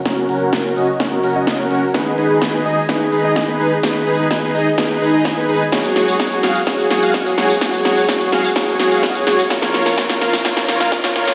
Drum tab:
HH |--o---o---o---o-|--o---o---o---o-|--o---o---o---o-|--o---o---o---o-|
TB |----------------|----------------|----------------|xx-xxx-xxx-xxx-x|
SD |o---o---o---o---|o---o---o---o---|o---o---o---o---|o-o-o-o-o-o-o-o-|
BD |o---o---o---o---|o---o---o---o---|o---o---o---o---|o---o---o---o---|

HH |--o---o---o---o-|--o---o---o---o-|
TB |xx-xxx-xxx-xxx-x|xx-xxx-xxx-xxx-x|
SD |o-o-o-o-o-o-o-o-|oooooooooooooooo|
BD |o---o---o---o---|o---o---o---o---|